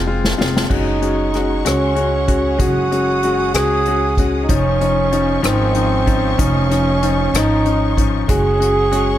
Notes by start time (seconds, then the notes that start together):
Already playing: F1
0.06 G#3 C4 F4
0.25 snare
0.37 F1 G#3 C4 F4, snare
0.57 snare
0.69 F#1 G#3 C#4 D#4 F#4 G#4 C#5 F#5 C#6, kick, crash
1.02 G#3 C#4 F#4, closed hi-hat
1.34 G#3 C#4 F#4, cross-stick, closed hi-hat
1.65 C#2 G#3 C#4 F#4, cross-stick, closed hi-hat
1.95 G#3 C#4 F#4, closed hi-hat
2.27 G#3 C#4 F#4, kick, closed hi-hat
2.58 F#1 G#3 C#4 F#4 D#6, kick, closed hi-hat
2.91 G#3 C#4 F#4, closed hi-hat
3.23 G#3 C#4 F#4, closed hi-hat
3.54 C#2 G#3 C#4 F#4 G#4, cross-stick, closed hi-hat
3.85 G#3 C#4 F#4, closed hi-hat
4.17 G#3 C#4 F#4, kick, closed hi-hat
4.43 D#4
4.49 F1 F3 C#4 D#4 D#5 F5 C#6, kick, closed hi-hat
4.81 F3 C#4 D#4, closed hi-hat
5.12 F3 C#4 D#4, closed hi-hat
5.42 G#1 F3 C4 C#4 D#4, cross-stick, closed hi-hat
5.74 F3 C#4 D#4, closed hi-hat
6.06 F3 C#4 D#4, kick, closed hi-hat
6.38 F1 F3 C#4 D#4, kick, closed hi-hat
6.70 F3 C#4 D#4, cross-stick, closed hi-hat
7.02 F3 C#4 D#4, closed hi-hat
7.34 G#1 F3 C#4 D#4, cross-stick, closed hi-hat
7.65 F3 C#4 D#4, closed hi-hat
7.97 F3 C#4 D#4, kick, closed hi-hat
8.28 F#1 G#3 C#4 F#4 G#4 C#5 F#5 C#6, kick, closed hi-hat
8.59 G#3 C#4 F#4, closed hi-hat
8.92 G#3 C#4 F#4, closed hi-hat